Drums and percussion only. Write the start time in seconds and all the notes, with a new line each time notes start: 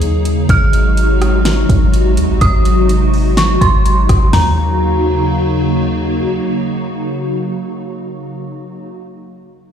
0.02 closed hi-hat
0.25 closed hi-hat
0.49 kick, closed hi-hat
0.73 closed hi-hat
0.97 closed hi-hat
1.22 cross-stick, closed hi-hat
1.45 snare, closed hi-hat
1.69 kick, closed hi-hat
1.94 closed hi-hat
2.17 closed hi-hat
2.41 kick, closed hi-hat
2.65 closed hi-hat
2.89 closed hi-hat
3.14 open hi-hat
3.37 snare, closed hi-hat
3.61 kick, closed hi-hat
3.86 closed hi-hat
4.09 kick, cross-stick, closed hi-hat
4.33 snare, floor tom, open hi-hat